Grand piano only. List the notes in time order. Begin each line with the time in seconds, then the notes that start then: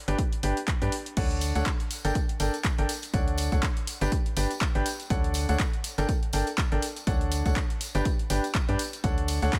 0.08 D4 G4 B4 G5
0.43 D4 G4 B4 G5
0.82 D4 G4 B4 G5
1.17 D4 A4 C#5 F#5
1.55 D4 A4 C#5 F#5
2.05 D4 A4 A#4 G5
2.40 D4 A4 A#4 G5
2.78 D4 A4 A#4 G5
3.14 D4 A4 C#5 F#5
3.52 D4 A4 C#5 F#5
4.01 D4 G4 B4 G5
4.37 D4 G4 B4 G5
4.75 D4 G4 B4 G5
5.10 D4 A4 C#5 F#5
5.49 D4 A4 C#5 F#5
5.98 D4 A4 A#4 G5
6.33 D4 A4 A#4 G5
6.72 D4 A4 A#4 G5
7.07 D4 A4 C#5 F#5
7.46 D4 A4 C#5 F#5
7.95 D4 G4 B4 G5
8.30 D4 G4 B4 G5
8.69 D4 G4 B4 G5
9.04 D4 A4 C#5 F#5
9.42 D4 A4 C#5 F#5